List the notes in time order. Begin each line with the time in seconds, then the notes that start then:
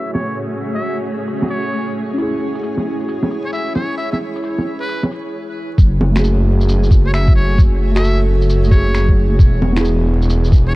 Already playing: A3 C#4 F#4 G#4 C#5 E5
0.14 C#5, low bongo
0.37 shaker
0.74 E5, shaker
0.82 shaker
1.20 shaker
1.27 shaker
1.42 low bongo, shaker
1.50 C#5, shaker
1.72 shaker
2.14 C#4 E4, shaker
2.18 E4 C#5
2.22 G#4
2.55 shaker
2.63 shaker
2.77 low bongo
3.00 shaker
3.08 shaker
3.23 low bongo, shaker
3.31 shaker
3.45 C#5
3.53 E5, shaker
3.75 C#5, low bongo
3.98 E5, shaker
4.12 E5, low bongo
4.35 shaker
4.43 shaker
4.58 low bongo
4.80 B4, shaker
4.89 shaker
5.03 low bongo, shaker
5.11 shaker
5.78 F#1 A3 F#4 C#5 G#5, kick, shaker
6.01 low bongo
6.12 A3 F#4
6.16 G#4, finger snap, low bongo, shaker
6.24 shaker
6.61 shaker
6.69 shaker
6.83 shaker
6.91 kick, shaker
7.06 C#5
7.14 E5, finger snap, shaker
7.28 kick
7.36 C#5
7.58 kick, shaker
7.92 A3 F#4
7.96 A4 E5, finger snap, shaker
8.04 shaker
8.41 shaker
8.49 shaker
8.64 A3, shaker
8.71 F#4 G#4 C#5, kick, shaker
8.95 finger snap, shaker
9.09 kick
9.39 E1 E4 G#4 B4 G#5, kick, shaker
9.62 low bongo
9.73 B3 E4, finger snap, low bongo, shaker
9.80 G#4
9.85 shaker
10.22 shaker
10.30 shaker
10.44 shaker
10.52 kick, shaker
10.67 C#5